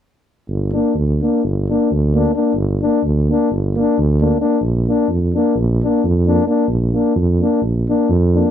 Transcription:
0.48 tuba G1
0.73 euphonium A#3, trombone D4
0.95 tuba D2
1.22 euphonium A#3, trombone D4
1.44 tuba G1
1.70 euphonium A#3, trombone D4
1.91 tuba D2
2.14 euphonium A#3, trombone D4
2.35 euphonium A#3, trombone D4
2.55 tuba G1
2.82 euphonium A#3, trombone D4
3.04 tuba D2
3.29 euphonium A#3, trombone D4
3.51 tuba G1
3.75 euphonium A#3, trombone D4
3.98 tuba D2
4.21 euphonium A#3, trombone D4
4.41 euphonium A#3, trombone D4
4.61 tuba A#1
4.87 euphonium A#3, trombone D4
5.09 tuba F2
5.35 euphonium A#3, trombone D4
5.56 tuba A#1
5.83 euphonium A#3, trombone D4
6.04 tuba F2
6.27 euphonium A#3, trombone D4
6.47 euphonium A#3, trombone D4
6.67 tuba A#1
6.93 euphonium A#3, trombone D4
7.16 tuba F2
7.40 euphonium A#3, trombone D4
7.62 tuba A#1
7.89 euphonium A#3, trombone D4
8.09 tuba F2
8.35 euphonium A#3, trombone D4

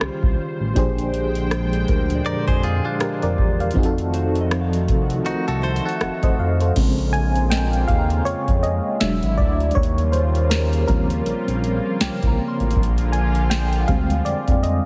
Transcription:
Already playing: analog synth pad C#3 G3 F4 C5, fm electric piano D#3 C#4 F4 G4 C5
0.01 analog synth bass C2, cross-stick
0.23 analog synth bass C2, kick
0.60 analog synth bass A1
0.74 analog synth bass A#1, fm electric piano A#2 F3 D4 G4, analog synth pad D3 G#3 G5, synth bell C5, kick, closed hi-hat
0.78 fm electric piano G#4 C5
0.98 closed hi-hat
1.14 closed hi-hat
1.35 closed hi-hat
1.51 cross-stick, closed hi-hat
1.73 closed hi-hat
1.88 analog synth bass D2, synth bell A#4, kick, closed hi-hat
2.10 closed hi-hat
2.15 synth bell D5
2.26 analog synth bass F2, clean electric guitar A#4 D5, closed hi-hat
2.48 analog synth bass F2, clean electric guitar G#4 C5, kick, closed hi-hat
2.63 clean electric guitar F4 G#4, closed hi-hat
2.85 clean electric guitar D4 F4
3.00 fm electric piano G4 A#4, cross-stick, closed hi-hat
3.22 analog synth bass F1, fm electric piano A#4 D5, closed hi-hat
3.38 analog synth bass E1, kick
3.60 fm electric piano D5 F5, closed hi-hat
3.71 fm electric piano F3, closed hi-hat
3.75 analog synth bass F1, analog synth pad D#3 F3 A3 F#4, fm electric piano C4 D#4 F#4 G#4, kick
3.83 fm electric piano A4, closed hi-hat
3.98 closed hi-hat
4.14 synth bell C5, closed hi-hat
4.35 closed hi-hat
4.41 synth bell D#5
4.51 synth bell C5, cross-stick, closed hi-hat
4.61 synth bell F5
4.73 closed hi-hat
4.88 analog synth bass C2, kick, closed hi-hat
5.10 closed hi-hat
5.26 analog synth bass C2, clean electric guitar D#4 F#4, closed hi-hat
5.48 analog synth bass C2, clean electric guitar F#4 A4, closed hi-hat
5.63 clean electric guitar A4 C5, closed hi-hat
5.76 closed hi-hat
5.85 clean electric guitar F#4 A4, closed hi-hat
6.01 analog synth bass F1, cross-stick, closed hi-hat
6.23 analog synth bass F1, fm electric piano C5 D#5, kick, closed hi-hat
6.39 analog synth bass F2, fm electric piano F5
6.60 fm electric piano A4 C5, closed hi-hat
6.76 analog synth bass A#1, fm electric piano C#3 G#3 C4, analog synth pad C#3 G#3 A#3 F4, kick, closed hi-hat, crash
6.98 closed hi-hat
7.13 fm electric piano G#5, closed hi-hat
7.36 closed hi-hat
7.50 synth bell D#5, fm electric piano G5, snare, closed hi-hat
7.73 closed hi-hat
7.77 synth bell G5
7.88 analog synth bass D#2, fm electric piano F5, synth bell F5, kick, closed hi-hat
7.99 synth bell A#5
8.10 closed hi-hat
8.25 analog synth bass F2, fm electric piano C#5, closed hi-hat
8.48 analog synth bass F2, kick, closed hi-hat
8.63 fm electric piano D#5, closed hi-hat
9.00 analog synth bass E1, analog synth pad D3 F#3 E4, fm electric piano F#3 G#3 D4 E5, snare, closed hi-hat
9.23 analog synth bass G#1, closed hi-hat
9.38 analog synth bass D2, fm electric piano D5, kick
9.60 closed hi-hat
9.71 closed hi-hat
9.75 analog synth bass D#2, analog synth pad C#3 G3 A#3 F4, fm electric piano C#5, kick
9.83 closed hi-hat
9.98 closed hi-hat
10.12 fm electric piano C5, closed hi-hat
10.35 closed hi-hat
10.50 fm electric piano A#4, snare, closed hi-hat
10.73 closed hi-hat
10.88 analog synth bass D#2, fm electric piano C#3 F3 G3 C4 A#4, kick, closed hi-hat
11.10 closed hi-hat
11.26 analog synth bass A#1, closed hi-hat
11.48 analog synth bass A#1, closed hi-hat
11.64 closed hi-hat
12.01 analog synth bass C2, synth bell G5, snare, closed hi-hat
12.23 analog synth bass C2, kick, closed hi-hat
12.27 synth bell A#5
12.48 synth bell C6
12.60 analog synth bass A1, closed hi-hat
12.71 closed hi-hat
12.76 analog synth bass A#1, analog synth pad D3 F3 F4, kick
12.83 closed hi-hat
12.98 closed hi-hat
13.12 fm electric piano G#5, closed hi-hat
13.35 closed hi-hat
13.50 fm electric piano G5, snare, closed hi-hat
13.73 closed hi-hat
13.88 analog synth bass D2, fm electric piano D3 G3 G#3 C4 F5, kick, closed hi-hat
14.10 closed hi-hat
14.25 analog synth bass F2, fm electric piano D5, closed hi-hat
14.48 analog synth bass F2, kick, closed hi-hat
14.63 fm electric piano D#5, closed hi-hat

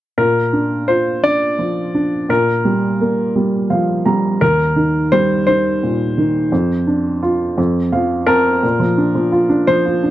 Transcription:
0.18 upright piano A#2, grand piano A#4
0.53 upright piano D4
0.88 upright piano F4, grand piano C5
1.23 upright piano D4, grand piano D5
1.59 upright piano F3
1.95 upright piano D4
2.29 upright piano A#2, grand piano A#4
2.65 upright piano G3
3.01 upright piano A#3
3.36 upright piano G3
3.70 upright piano F3 F5
4.06 upright piano G3 A#5
4.41 upright piano D#2, grand piano A#4
4.76 upright piano D#3
5.12 upright piano G3, grand piano C5
5.47 upright piano D#3, grand piano C5
5.83 upright piano A#2
6.18 upright piano D#3
6.52 upright piano F2
6.87 upright piano D4
7.22 upright piano F4
7.58 upright piano F2
7.92 upright piano F3 F5
8.27 upright piano C4 A5, grand piano A#4
8.63 upright piano A#2
8.80 upright piano F3
8.98 upright piano D4
9.15 upright piano F3
9.32 upright piano F4
9.49 upright piano D4
9.67 upright piano F3, grand piano C5
9.85 upright piano F4
10.03 upright piano D4

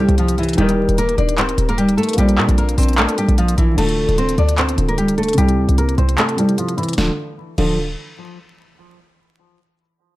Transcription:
Already playing: french horn section C3 C4 E4 G4, grand piano C3 C4, nylon-string guitar G4
0.00 nylon-string guitar G3, grand piano E4 G4
0.09 808-style bass C2, closed hi-hat
0.18 nylon-string guitar F3 F4, closed hi-hat
0.28 closed hi-hat
0.38 nylon-string guitar E3 E4, closed hi-hat
0.43 closed hi-hat
0.49 closed hi-hat
0.53 grand piano D#3, closed hi-hat
0.58 808-style bass D#1, brass ensemble A#1 G2 D#3, french horn section D#3 D#4 G4 A#4, nylon-string guitar G3 G4, grand piano D#4 G4, closed hi-hat
0.63 grand piano A#4
0.69 closed hi-hat
0.89 808-style bass D#1, closed hi-hat
0.98 nylon-string guitar A#3 A#4, closed hi-hat
1.09 closed hi-hat
1.18 808-style bass D#1, nylon-string guitar D4 D5, closed hi-hat
1.29 closed hi-hat
1.38 nylon-string guitar C4 C5, clap, closed hi-hat
1.49 closed hi-hat
1.58 808-style bass D#1, closed hi-hat
1.69 nylon-string guitar A#3 A#4, closed hi-hat
1.78 nylon-string guitar G3 G4, closed hi-hat
1.89 closed hi-hat
1.98 nylon-string guitar A3 A4, closed hi-hat
2.03 closed hi-hat
2.09 closed hi-hat
2.13 grand piano A#3 F4, closed hi-hat
2.18 808-style bass A#1, nylon-string guitar G3 G4, french horn section A#3 C4 D4, grand piano C5, closed hi-hat
2.22 grand piano D5
2.29 closed hi-hat
2.38 808-style bass A#2, clap
2.49 808-style bass A#1, closed hi-hat
2.58 nylon-string guitar A#3 A#4, closed hi-hat
2.69 closed hi-hat
2.78 808-style bass A#1, nylon-string guitar C4 C5, closed hi-hat, open hi-hat
2.83 closed hi-hat
2.89 closed hi-hat
2.93 closed hi-hat
2.98 nylon-string guitar A3 A4, clap, closed hi-hat
3.09 closed hi-hat
3.18 nylon-string guitar G3 G4, closed hi-hat
3.29 808-style bass A#1, closed hi-hat
3.38 nylon-string guitar F3 F4, closed hi-hat
3.48 closed hi-hat
3.58 808-style bass A#1, nylon-string guitar E3 E4, closed hi-hat
3.74 808-style bass D1, grand piano D3 D4, nylon-string guitar A4, closed hi-hat, crash
3.79 nylon-string guitar A3, grand piano F4 A4
3.89 closed hi-hat
4.09 808-style bass D1, closed hi-hat
4.18 nylon-string guitar C4 C5, closed hi-hat
4.29 closed hi-hat
4.38 808-style bass D2, nylon-string guitar D4 D5, closed hi-hat
4.49 closed hi-hat
4.58 nylon-string guitar C4 C5, clap, closed hi-hat
4.69 closed hi-hat
4.75 808-style bass D1, grand piano D3 D4 F4, closed hi-hat
4.80 grand piano A4
4.89 nylon-string guitar A#3 A#4, closed hi-hat
4.98 nylon-string guitar G3 G4, closed hi-hat
5.08 closed hi-hat
5.18 nylon-string guitar A3 A4, closed hi-hat
5.23 closed hi-hat
5.29 closed hi-hat
5.33 grand piano C3 C4, closed hi-hat
5.38 808-style bass C2, nylon-string guitar G3 G4, grand piano E4, closed hi-hat
5.42 grand piano G4
5.49 closed hi-hat
5.58 808-style bass D2
5.69 808-style bass C2, closed hi-hat
5.78 nylon-string guitar A#3 A#4, closed hi-hat
5.89 closed hi-hat
5.98 808-style bass C2, nylon-string guitar C4 C5, closed hi-hat
6.09 closed hi-hat
6.18 nylon-string guitar A3 A4, clap, closed hi-hat
6.29 closed hi-hat
6.36 grand piano C3 C4 E4, nylon-string guitar G3 G4, closed hi-hat
6.40 grand piano G4
6.49 closed hi-hat
6.58 nylon-string guitar F3 F4, closed hi-hat
6.69 closed hi-hat
6.77 nylon-string guitar E3 E4, closed hi-hat
6.83 closed hi-hat
6.89 closed hi-hat
6.93 closed hi-hat
6.98 808-style bass D1, grand piano D3 D4 F4 A4, nylon-string guitar F3, snare
7.58 808-style bass D1, grand piano D3 D4 F4 A4, nylon-string guitar F3, crash

